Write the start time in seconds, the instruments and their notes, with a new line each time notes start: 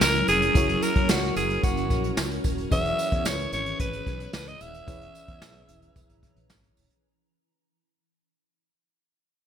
Already playing: ambient pad F#3 C#4 E4 A#4, fm electric piano C#4 E4 F#4 A#4 C#5
0.01 fretless electric bass C#2, alto saxophone A#4, snare, tambourine
0.15 closed hi-hat
0.28 fretless electric bass F1, alto saxophone G#4, closed hi-hat, tambourine
0.42 closed hi-hat
0.54 fretless electric bass F#1, fm electric piano C#4 E4 F#4 A#4 C#5, ambient pad F#4, kick, closed hi-hat, tambourine
0.69 closed hi-hat
0.82 alto saxophone A#4, closed hi-hat, tambourine
0.96 fretless electric bass F#2, kick, closed hi-hat
1.09 fretless electric bass C#2, alto saxophone F#4, snare, tambourine
1.23 closed hi-hat
1.36 fretless electric bass F#1, alto saxophone G#4, closed hi-hat, tambourine
1.50 closed hi-hat
1.63 fretless electric bass F#1, alto saxophone F#4, kick, closed hi-hat, tambourine
1.77 closed hi-hat
1.90 fretless electric bass A#1, kick, closed hi-hat, tambourine
2.04 closed hi-hat
2.17 fretless electric bass C#2, snare, tambourine
2.31 closed hi-hat
2.44 fretless electric bass D#1, kick, closed hi-hat, tambourine
2.58 closed hi-hat
2.71 fretless electric bass E1, ambient pad E3 E4 B4, fm electric piano E3 C#4 E4 G#4 B4 C#5, alto saxophone E5, kick, closed hi-hat, tambourine
2.85 closed hi-hat
2.99 closed hi-hat, tambourine
3.12 fretless electric bass E2, kick, closed hi-hat
3.25 fretless electric bass C#2, alto saxophone C#5, snare, tambourine
3.40 closed hi-hat
3.52 fretless electric bass G#1, alto saxophone C#5, closed hi-hat, tambourine
3.66 closed hi-hat
3.80 fretless electric bass G#1, alto saxophone B4, kick, closed hi-hat
3.93 closed hi-hat
4.07 fretless electric bass B1, kick, closed hi-hat
4.20 closed hi-hat
4.33 fretless electric bass C#2, alto saxophone B4, snare, tambourine
4.47 alto saxophone D#5, closed hi-hat
4.61 fretless electric bass D#1, alto saxophone E5, closed hi-hat, tambourine
4.74 closed hi-hat
4.87 fretless electric bass E1, fm electric piano E3 C#4 E4 G#4 B4 C#5, ambient pad A#5, kick, closed hi-hat, tambourine
5.01 closed hi-hat
5.15 closed hi-hat, tambourine
5.28 fretless electric bass E2, kick, closed hi-hat
5.42 fretless electric bass B1, snare, tambourine
5.55 closed hi-hat
5.68 fretless electric bass E1, closed hi-hat, tambourine
5.82 closed hi-hat
5.96 fretless electric bass E1, kick, closed hi-hat, tambourine
6.09 fretless electric bass G#1, closed hi-hat
6.23 kick, closed hi-hat
6.36 fretless electric bass A#1, closed hi-hat
6.50 fretless electric bass G#1, snare, tambourine
6.64 closed hi-hat
6.77 fretless electric bass D#1, open hi-hat, tambourine
6.90 closed hi-hat